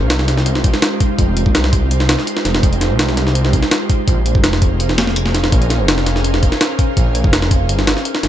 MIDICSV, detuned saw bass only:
0, 0, Header, 1, 2, 480
1, 0, Start_track
1, 0, Key_signature, -4, "minor"
1, 0, Tempo, 361446
1, 1575, Time_signature, 4, 2, 24, 8
1, 11000, End_track
2, 0, Start_track
2, 0, Title_t, "Detuned saw bass"
2, 0, Program_c, 0, 39
2, 19, Note_on_c, 0, 36, 100
2, 959, Note_off_c, 0, 36, 0
2, 1575, Note_on_c, 0, 29, 102
2, 1939, Note_on_c, 0, 36, 99
2, 1959, Note_off_c, 0, 29, 0
2, 2879, Note_off_c, 0, 36, 0
2, 3255, Note_on_c, 0, 29, 81
2, 3471, Note_off_c, 0, 29, 0
2, 3495, Note_on_c, 0, 29, 103
2, 3857, Note_on_c, 0, 36, 100
2, 3877, Note_off_c, 0, 29, 0
2, 4798, Note_off_c, 0, 36, 0
2, 5413, Note_on_c, 0, 34, 101
2, 5777, Note_on_c, 0, 29, 98
2, 5797, Note_off_c, 0, 34, 0
2, 6607, Note_off_c, 0, 29, 0
2, 6615, Note_on_c, 0, 29, 81
2, 7316, Note_off_c, 0, 29, 0
2, 7336, Note_on_c, 0, 34, 101
2, 7698, Note_on_c, 0, 29, 97
2, 7718, Note_off_c, 0, 34, 0
2, 8638, Note_off_c, 0, 29, 0
2, 9255, Note_on_c, 0, 34, 99
2, 9618, Note_on_c, 0, 29, 100
2, 9637, Note_off_c, 0, 34, 0
2, 10195, Note_off_c, 0, 29, 0
2, 10214, Note_on_c, 0, 31, 97
2, 10558, Note_off_c, 0, 31, 0
2, 10935, Note_on_c, 0, 31, 83
2, 11000, Note_off_c, 0, 31, 0
2, 11000, End_track
0, 0, End_of_file